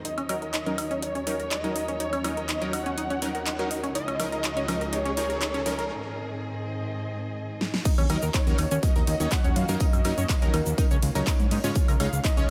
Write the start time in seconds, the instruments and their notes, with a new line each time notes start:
Already playing: string section D#3
0.05 string section D#2 F3 F#3 C#5, synth arpeggio sound D#4, analog synth lead D#5, closed hi-hat, riser
0.18 synth arpeggio sound C#4, closed hi-hat, high woodblock
0.29 supersaw synth F#3 C#4 D#4 A#4, open hi-hat, high woodblock
0.42 synth arpeggio sound A#4, closed hi-hat
0.54 synth arpeggio sound D#4, clap, closed hi-hat
0.66 supersaw synth F#3 C#4 D#4 A#4, closed hi-hat
0.78 synth arpeggio sound D#4, open hi-hat, high woodblock
0.91 synth arpeggio sound C#4, closed hi-hat
1.02 synth arpeggio sound D#4, analog synth lead C#5, closed hi-hat
1.15 synth arpeggio sound C#4, closed hi-hat
1.27 supersaw synth F#3 C#4 D#4 A#4, open hi-hat
1.40 synth arpeggio sound A#4, closed hi-hat
1.51 synth arpeggio sound D#4, analog synth lead D#5, clap, closed hi-hat
1.64 supersaw synth F#3 C#4 D#4 A#4, closed hi-hat
1.76 synth arpeggio sound D#4, open hi-hat
1.88 synth arpeggio sound C#4, closed hi-hat
2.00 synth arpeggio sound D#4, analog synth lead C#5, closed hi-hat
2.13 synth arpeggio sound C#4, closed hi-hat, high woodblock
2.24 supersaw synth F#3 C#4 D#4 A#4, analog synth lead D#5, open hi-hat, high woodblock
2.37 synth arpeggio sound A#4, closed hi-hat
2.49 synth arpeggio sound D#4, clap, closed hi-hat
2.62 supersaw synth F#3 C#4 D#4 A#4, closed hi-hat
2.73 synth arpeggio sound D#4, analog synth lead F#5, open hi-hat, high woodblock
2.86 synth arpeggio sound C#4, closed hi-hat
2.98 synth arpeggio sound D#4, closed hi-hat
3.10 synth arpeggio sound C#4, closed hi-hat
3.22 supersaw synth F#3 C#4 D#4 A#4, open hi-hat
3.35 synth arpeggio sound A#4, closed hi-hat
3.46 synth arpeggio sound D#4, clap, closed hi-hat
3.59 supersaw synth F#3 C#4 D#4 A#4, closed hi-hat
3.71 synth arpeggio sound D#4, open hi-hat
3.83 synth arpeggio sound C#4, closed hi-hat
3.95 string section C#2 C#3 G#3 G#4, synth arpeggio sound D#4, analog synth lead D#5, closed hi-hat
4.08 synth arpeggio sound C#4, closed hi-hat, high woodblock
4.20 supersaw synth F3 C#4 D#4 A#4, open hi-hat, high woodblock
4.32 synth arpeggio sound A#4, closed hi-hat
4.44 synth arpeggio sound D#4, clap, closed hi-hat
4.57 synth arpeggio sound C#4, closed hi-hat
4.68 supersaw synth F3 C#4 D#4 A#4, open hi-hat, high woodblock
4.81 synth arpeggio sound A#4, closed hi-hat
4.93 synth arpeggio sound D#4, analog synth lead C#5, closed hi-hat
5.05 synth arpeggio sound C#4, closed hi-hat
5.17 supersaw synth F3 C#4 D#4 A#4, open hi-hat
5.30 synth arpeggio sound A#4, closed hi-hat
5.41 synth arpeggio sound D#4, clap, closed hi-hat
5.54 synth arpeggio sound C#4, closed hi-hat
5.66 supersaw synth F3 C#4 D#4 A#4, open hi-hat
5.79 synth arpeggio sound A#4, closed hi-hat
5.90 string section G#2 D#3 C4 D#5
7.61 snare
7.74 snare
7.85 string section D#3 A#3 C#4 F4 F#4, synth arpeggio sound D#4, kick, closed hi-hat, crash, ride, tambourine, shaker
7.98 analog synth bass D#2, synth arpeggio sound C#4, closed hi-hat, high woodblock, shaker
8.09 analog synth bass D#2, supersaw synth F#3 C#4 D#4 A#4, analog synth lead D#5, open hi-hat, ride, tambourine, high woodblock
8.22 analog synth bass D#2, synth arpeggio sound A#4, closed hi-hat, shaker
8.34 synth arpeggio sound D#4, analog synth lead C#5, kick, snare, clap, closed hi-hat, ride, tambourine, shaker
8.47 analog synth bass D#2, supersaw synth F#3 C#4 D#4 A#4, closed hi-hat, shaker
8.58 analog synth bass D#2, synth arpeggio sound D#4, open hi-hat, ride, tambourine, high woodblock
8.71 analog synth bass D#2, synth arpeggio sound C#4, closed hi-hat, shaker
8.83 supersaw synth F#3 C#4 D#4 A#4, analog synth lead D#5, kick, closed hi-hat, ride, tambourine, shaker
8.96 analog synth bass D#2, synth arpeggio sound A#4, snare, closed hi-hat, shaker
9.07 analog synth bass D#2, synth arpeggio sound D#4, open hi-hat, ride, tambourine
9.20 analog synth bass D#2, supersaw synth F#3 C#4 D#4 C#5, closed hi-hat, shaker
9.31 synth arpeggio sound D#4, analog synth lead F#5, kick, snare, clap, closed hi-hat, ride, tambourine, shaker
9.44 analog synth bass D#1, synth arpeggio sound C#4, closed hi-hat, shaker
9.56 analog synth bass F#2, analog synth lead F5, open hi-hat, ride
9.69 analog synth bass F#2, supersaw synth F#3 C#4 D#4 A#4, synth arpeggio sound A#4, closed hi-hat, shaker
9.80 synth arpeggio sound D#4, analog synth lead D#5, kick, closed hi-hat, ride, tambourine, shaker
9.93 analog synth bass F#2, closed hi-hat, high woodblock, shaker
10.04 analog synth bass F#2, supersaw synth F#3 C#4 D#4 A#4, synth arpeggio sound D#4, open hi-hat, ride, tambourine, high woodblock
10.18 analog synth bass F#2, synth arpeggio sound C#4, closed hi-hat, shaker
10.29 kick, snare, clap, closed hi-hat, ride, tambourine, shaker
10.42 analog synth bass D#2, supersaw synth F#3 C#4 D#4 A#4, synth arpeggio sound A#4, closed hi-hat, shaker
10.53 analog synth bass D#2, synth arpeggio sound D#4, analog synth lead A#4, open hi-hat, ride, tambourine, high woodblock
10.66 analog synth bass D#2, closed hi-hat, shaker
10.78 supersaw synth F#3 C#4 D#4 A#4, synth arpeggio sound D#4, kick, closed hi-hat, ride, tambourine, shaker
10.91 analog synth bass C#2, synth arpeggio sound C#4, closed hi-hat, shaker
11.02 analog synth bass C#2, open hi-hat, ride, tambourine
11.15 analog synth bass C#2, supersaw synth F#3 C#4 D#4 C#5, synth arpeggio sound A#4, snare, closed hi-hat, shaker
11.27 synth arpeggio sound D#4, kick, snare, clap, closed hi-hat, ride, tambourine, shaker
11.40 analog synth bass G#2, closed hi-hat, shaker
11.51 analog synth bass G#2, synth arpeggio sound D#4, open hi-hat, ride
11.64 analog synth bass G#2, supersaw synth C#3 G#3 C#4 F4 C#5, synth arpeggio sound C#4, snare, closed hi-hat, shaker
11.75 string section G#3, kick, closed hi-hat, ride, tambourine, shaker
11.88 analog synth bass C#2, synth arpeggio sound A#4, closed hi-hat, high woodblock, shaker
12.00 analog synth bass C#2, supersaw synth C#3 G#3 C#4 F4 C#5, synth arpeggio sound D#4, analog synth lead F5, open hi-hat, ride, tambourine, high woodblock
12.13 analog synth bass C#2, closed hi-hat, shaker
12.24 synth arpeggio sound D#4, analog synth lead D#5, kick, snare, clap, closed hi-hat, ride, tambourine, shaker
12.37 analog synth bass C#2, supersaw synth C#3 G#3 C#4 F4 C#5, synth arpeggio sound C#4, closed hi-hat, shaker